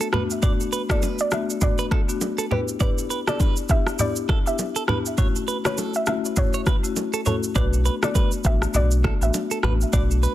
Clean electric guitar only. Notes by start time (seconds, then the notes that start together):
0.01 A4
0.13 B4
0.43 D5
0.73 B4
0.90 A4
1.02 B4
1.79 B4
1.91 A4
2.38 A4
2.51 G4
2.81 D5
3.10 B4
3.28 A4
3.40 B4
4.29 A4
4.76 A4
4.89 B4
5.18 C#5
5.48 B4
5.65 B4
5.78 A4
6.54 C#5
6.67 B4
7.14 A4
7.26 C#5
7.56 D5
7.86 B4
8.03 A4
8.15 B4
9.04 A4
9.51 A4
9.64 B4
9.93 D5
10.23 B4